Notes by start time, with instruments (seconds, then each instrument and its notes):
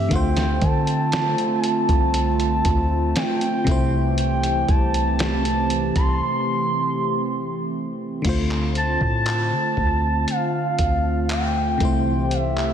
Already playing: analog synth pad C4, soft synth lead E5
0.09 808-style bass D2, fm electric piano D3 A3, analog synth pad D3 A3 F4, soft synth lead G5, kick, closed hi-hat
0.13 fm electric piano F4 C5
0.37 snare, closed hi-hat
0.62 808-style bass D3, soft synth lead A5, kick, closed hi-hat
0.87 closed hi-hat
1.12 snare, closed hi-hat
1.38 closed hi-hat
1.58 soft synth lead G#5
1.64 soft synth lead A5, closed hi-hat
1.89 808-style bass C2, kick, closed hi-hat
2.14 closed hi-hat
2.40 closed hi-hat
2.65 808-style bass D2, kick, closed hi-hat
3.16 soft synth lead G5, snare, closed hi-hat
3.41 closed hi-hat
3.64 808-style bass C2, fm electric piano C3 A3, analog synth pad E3 G4, kick, closed hi-hat
3.69 fm electric piano E4 C5
4.18 soft synth lead G5, closed hi-hat
4.43 closed hi-hat
4.69 808-style bass C2, soft synth lead A5, kick, closed hi-hat
4.94 closed hi-hat
5.19 snare, closed hi-hat
5.45 closed hi-hat
5.70 closed hi-hat
5.96 808-style bass C2, soft synth lead C6, kick, cross-stick, closed hi-hat
8.22 808-style bass D2, fm electric piano D3 A3, analog synth pad D3 A3 C4 F4, kick, closed hi-hat, crash
8.27 fm electric piano F4 C5
8.51 clap
8.75 soft synth lead A5, closed hi-hat
9.01 808-style bass A2, kick
9.26 clap, closed hi-hat
9.52 808-style bass D3
9.77 808-style bass D2, kick
10.28 soft synth lead F5, closed hi-hat
10.79 808-style bass D2, kick, closed hi-hat
11.29 soft synth lead G5, clap, closed hi-hat
11.78 808-style bass C2, fm electric piano C3 A3, analog synth pad E3 G4, kick, closed hi-hat
11.83 fm electric piano E4 C5
12.31 soft synth lead E5, closed hi-hat
12.57 clap